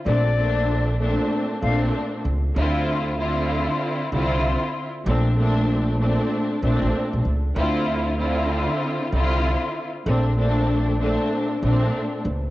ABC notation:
X:1
M:4/4
L:1/16
Q:"Swing 16ths" 1/4=96
K:Bblyd
V:1 name="Flute"
d4- d z4 z f z4 z | z16 | z16 | z16 |
z16 |]
V:2 name="String section"
[B,,A,CD]2 [B,,A,CD]4 [B,,A,CD]4 [B,,A,CD]4 z2 | [D,CEF]4 [D,CEF]6 [D,CEF]4 z2 | [B,,A,CD]2 [B,,A,CD]4 [B,,A,CD]4 [B,,A,CD]4 z2 | [D,CEF]4 [D,CEF]6 [D,CEF]4 z2 |
[B,,A,CD]2 [B,,A,CD]4 [B,,A,CD]4 [B,,A,CD]4 z2 |]
V:3 name="Upright bass" clef=bass
B,,,6- B,,, z3 B,,,2 z2 ^C,,2 | D,,6- D,, z3 C,,3 z3 | B,,,6- B,,, z3 B,,, A,,, z B,,, ^C,,2 | D,,6- D,, z3 C,,3 z3 |
B,,,6- B,,, z3 B,,,2 z2 ^C,,2 |]